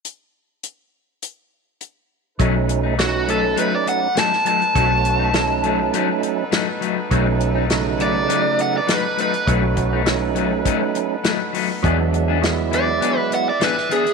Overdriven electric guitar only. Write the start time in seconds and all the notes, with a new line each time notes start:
3.00 F#4
3.30 A4
3.59 B4
3.75 D5
3.89 F#5
4.19 A5
4.47 A5
8.02 D5
8.61 F#5
8.78 D5
8.93 B4
9.21 B4
12.75 D5
13.18 B4
13.35 F#5
13.49 D5
13.63 B4
13.92 G#4